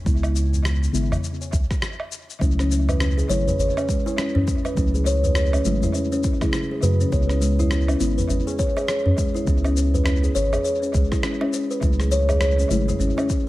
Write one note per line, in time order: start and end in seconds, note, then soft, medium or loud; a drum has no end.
0.04 0.88 C#2 loud
0.04 0.91 C#3 medium
0.04 0.91 G#3 medium
0.04 0.92 B3 medium
0.04 0.92 E4 medium
0.04 kick loud
0.04 shaker soft
0.23 low woodblock medium
0.23 shaker soft
0.36 shaker medium
0.53 tabla ge medium
0.53 shaker soft
0.65 cross-stick loud
0.65 shaker soft
0.83 shaker soft
0.92 1.16 G#1 medium
0.92 1.13 C#3 medium
0.92 1.14 G#3 medium
0.92 1.14 B3 medium
0.92 1.14 E4 medium
0.92 shaker medium
1.11 tabla tin medium
1.11 tabla ge loud
1.11 low woodblock medium
1.11 shaker soft
1.24 shaker soft
1.41 tabla tin medium
1.41 shaker soft
1.53 1.65 C#2 medium
1.53 kick loud
1.53 shaker medium
1.71 kick medium
1.71 cross-stick soft
1.71 shaker soft
1.82 cross-stick loud
1.82 shaker soft
2.00 low woodblock medium
2.12 shaker medium
2.30 tabla tin soft
2.30 shaker soft
2.39 3.24 C#2 loud
2.39 3.26 C#3 medium
2.39 3.26 F#3 medium
2.39 3.27 A3 medium
2.39 2.58 C#4 medium
2.39 3.28 E4 medium
2.39 kick loud
2.39 shaker soft
2.59 2.70 C#4 medium
2.59 cross-stick soft
2.59 shaker soft
2.71 2.87 C#4 medium
2.71 shaker medium
2.88 2.95 B4 medium
2.88 tabla ge medium
2.88 low woodblock medium
2.88 shaker soft
3.00 3.10 C#4 medium
3.00 cross-stick loud
3.00 shaker soft
3.18 3.28 G#4 medium
3.18 shaker soft
3.29 3.51 G#1 medium
3.29 3.49 C#3 medium
3.29 3.50 F#3 medium
3.29 3.50 A3 medium
3.29 3.50 E4 medium
3.29 3.46 C#5 loud
3.29 shaker medium
3.48 3.59 B4 medium
3.48 tabla tin soft
3.48 tabla ge medium
3.48 shaker soft
3.59 3.71 G#1 loud
3.59 3.76 C#5 medium
3.59 shaker soft
3.77 3.87 C#4 medium
3.77 tabla na medium
3.77 tabla tin medium
3.77 low woodblock medium
3.77 shaker soft
3.89 4.06 G#3 medium
3.89 kick loud
3.89 shaker medium
4.06 4.17 E4 medium
4.06 tabla na medium
4.06 shaker soft
4.18 4.34 C#4 medium
4.18 cross-stick loud
4.18 shaker soft
4.35 4.44 F#2 medium
4.35 4.46 C#4 loud
4.35 tabla ge loud
4.47 4.63 C#4 medium
4.47 kick loud
4.47 shaker medium
4.65 4.72 B4 medium
4.65 low woodblock medium
4.65 shaker soft
4.75 5.59 C#2 loud
4.75 5.61 C#3 medium
4.75 5.62 F#3 medium
4.75 5.63 A3 medium
4.75 4.87 C#4 medium
4.75 kick loud
4.75 shaker soft
4.79 5.63 E4 medium
4.94 5.05 G#4 medium
4.94 shaker soft
5.06 5.23 C#5 loud
5.06 shaker medium
5.24 5.35 B4 medium
5.24 tabla ge medium
5.24 shaker soft
5.35 5.53 C#5 medium
5.35 cross-stick medium
5.35 shaker soft
5.53 5.64 C#4 medium
5.53 low woodblock medium
5.53 shaker soft
5.64 5.87 G#1 medium
5.64 5.84 C#3 medium
5.64 5.85 F#3 medium
5.64 5.82 G#3 medium
5.64 5.85 A3 medium
5.64 5.85 E4 medium
5.64 shaker medium
5.83 5.93 E4 medium
5.83 tabla tin soft
5.83 tabla ge medium
5.83 shaker soft
5.94 6.11 C#4 medium
5.94 shaker soft
6.12 6.23 C#4 loud
6.12 tabla tin medium
6.12 shaker soft
6.24 6.40 E4 medium
6.24 kick loud
6.24 shaker medium
6.40 6.56 C#3 medium
6.40 6.56 F#3 medium
6.40 6.57 A3 medium
6.40 6.57 E4 medium
6.40 6.52 G#4 medium
6.40 kick loud
6.40 cross-stick soft
6.40 low woodblock medium
6.40 shaker soft
6.53 6.69 E4 medium
6.53 cross-stick medium
6.53 shaker soft
6.71 6.82 G#4 medium
6.82 7.05 F#2 loud
6.82 7.09 C#3 medium
6.82 7.09 F#3 medium
6.82 7.09 A3 medium
6.82 7.10 F#4 medium
6.82 6.99 B4 loud
6.82 shaker medium
7.00 7.11 C#4 medium
7.00 tabla tin soft
7.00 shaker soft
7.10 7.95 C#2 loud
7.10 7.97 C#3 medium
7.10 7.97 G#3 medium
7.10 7.98 B3 medium
7.10 7.98 E4 medium
7.10 7.29 C#5 medium
7.10 kick loud
7.10 shaker soft
7.29 7.40 C#4 medium
7.29 cross-stick soft
7.29 shaker soft
7.41 7.58 G#3 medium
7.41 shaker medium
7.59 7.70 E4 loud
7.59 tabla ge medium
7.59 shaker soft
7.71 7.88 C#4 medium
7.71 cross-stick medium
7.71 shaker soft
7.88 7.99 C#4 medium
7.88 low woodblock medium
7.88 shaker soft
7.99 8.22 G#1 medium
7.99 8.19 C#3 medium
7.99 8.20 G#3 medium
7.99 8.20 B3 medium
7.99 8.16 C#4 medium
7.99 8.20 E4 loud
7.99 shaker medium
8.18 8.25 B4 medium
8.18 tabla tin soft
8.18 tabla ge medium
8.18 shaker soft
8.29 8.42 G#1 loud
8.29 8.40 C#4 medium
8.29 shaker soft
8.46 8.58 G#4 medium
8.46 tabla na medium
8.46 tabla tin medium
8.46 shaker soft
8.59 8.76 C#5 medium
8.59 kick loud
8.59 shaker medium
8.77 8.83 G#4 loud
8.77 tabla na medium
8.77 low woodblock medium
8.77 shaker soft
8.88 9.05 C#5 medium
8.88 cross-stick medium
8.88 shaker soft
9.06 9.14 F#2 medium
9.06 9.17 C#4 medium
9.06 tabla ge medium
9.17 9.34 G#3 medium
9.17 kick loud
9.17 shaker medium
9.35 9.46 E4 loud
9.35 shaker soft
9.45 10.30 C#2 loud
9.45 10.32 C#3 medium
9.45 10.32 G#3 medium
9.45 10.33 B3 medium
9.45 9.63 C#4 medium
9.45 kick loud
9.45 shaker soft
9.49 10.34 E4 medium
9.64 9.75 C#4 medium
9.64 low woodblock medium
9.64 shaker soft
9.77 9.93 C#4 medium
9.77 shaker medium
9.94 10.01 B4 medium
9.94 tabla ge loud
9.94 shaker soft
10.06 10.16 C#4 medium
10.06 cross-stick medium
10.06 shaker soft
10.24 10.34 G#4 medium
10.24 shaker soft
10.35 10.57 G#1 medium
10.35 10.52 C#5 medium
10.35 shaker medium
10.53 10.60 G#4 loud
10.53 tabla tin medium
10.53 tabla ge medium
10.53 low woodblock medium
10.53 shaker soft
10.64 10.81 C#5 medium
10.64 shaker soft
10.82 10.93 C#4 medium
10.82 tabla tin medium
10.82 shaker soft
10.94 11.06 C#2 medium
10.94 11.11 G#3 medium
10.94 kick loud
10.94 shaker medium
11.12 11.22 E4 medium
11.12 kick medium
11.12 cross-stick soft
11.12 shaker soft
11.23 11.40 C#4 medium
11.23 cross-stick medium
11.23 shaker soft
11.41 11.52 C#4 loud
11.41 low woodblock medium
11.53 11.69 C#4 medium
11.53 shaker medium
11.71 11.78 B4 medium
11.71 tabla tin soft
11.71 shaker soft
11.81 12.65 C#2 loud
11.81 12.67 C#3 medium
11.81 12.68 F#3 medium
11.81 12.68 A3 medium
11.81 11.93 C#4 medium
11.81 kick loud
11.81 shaker soft
11.85 12.69 E4 medium
12.00 12.11 G#4 medium
12.00 cross-stick soft
12.00 shaker soft
12.11 12.29 C#5 loud
12.11 shaker medium
12.29 12.36 G#4 loud
12.29 tabla ge medium
12.29 low woodblock medium
12.29 shaker soft
12.41 12.58 C#5 medium
12.41 cross-stick medium
12.41 shaker soft
12.59 12.69 C#4 medium
12.59 shaker soft
12.69 12.93 G#1 medium
12.69 12.90 C#3 medium
12.69 12.90 F#3 medium
12.69 12.87 G#3 medium
12.69 12.91 A3 medium
12.69 12.91 E4 medium
12.69 shaker medium
12.88 12.99 E4 medium
12.88 tabla tin medium
12.88 tabla ge medium
12.88 shaker soft
13.00 13.12 G#1 loud
13.00 13.16 C#4 medium
13.00 shaker soft
13.17 13.28 C#4 loud
13.17 tabla na medium
13.17 tabla tin medium
13.17 low woodblock medium
13.17 shaker soft
13.29 13.45 C#4 medium
13.29 kick loud
13.29 shaker medium